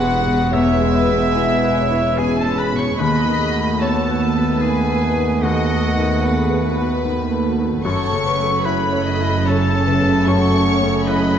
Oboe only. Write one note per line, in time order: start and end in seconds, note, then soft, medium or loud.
0.00 0.55 F#4 medium
0.54 2.20 E4 medium
2.18 2.38 G#4 medium
2.39 2.60 A4 medium
2.58 2.81 B4 medium
2.79 3.01 C#5 medium
2.99 3.53 B4 medium
3.80 4.63 A4 medium
4.62 5.44 G#4 medium
5.42 7.05 F#4 medium
7.85 8.66 C#5 medium
8.65 9.48 B4 medium
9.47 10.27 A4 medium
10.28 11.09 C#5 medium
11.08 11.39 B4 medium